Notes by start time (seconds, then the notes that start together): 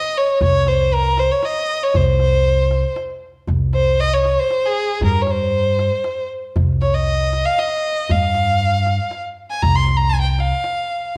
Already playing: D#5
0.17 C#5
0.41 C2 C#5, darbuka dum
0.66 C5, darbuka tek
0.92 A#4, darbuka ka
1.17 C5, darbuka tek
1.31 C#5
1.43 D#5, darbuka tek
1.83 C#5
1.94 C2 C5, darbuka dum
2.19 darbuka tek
2.45 darbuka ka
2.71 darbuka tek
2.97 darbuka tek
3.48 C2, darbuka dum
3.73 C5, darbuka tek
4.00 D#5, darbuka ka
4.13 C#5
4.25 darbuka tek
4.39 C5
4.50 darbuka tek
4.66 G#4
5.01 G2 A#4, darbuka dum
5.22 C#5
5.27 C5, darbuka tek
5.53 darbuka ka
5.79 darbuka tek
6.04 darbuka tek
6.56 C2, darbuka dum
6.82 C#5, darbuka tek
6.94 D#5
7.07 darbuka ka
7.33 darbuka tek
7.46 F5
7.58 D#5, darbuka tek
8.09 G2 F5, darbuka dum
8.34 darbuka tek
8.60 darbuka ka
8.86 darbuka tek
9.11 darbuka tek
9.50 G#5
9.62 C2 A#5, darbuka dum
9.75 C6
9.88 darbuka tek
9.97 A#5
10.09 G#5
10.14 darbuka ka
10.21 G5
10.31 G5
10.39 F5, darbuka tek
10.64 darbuka tek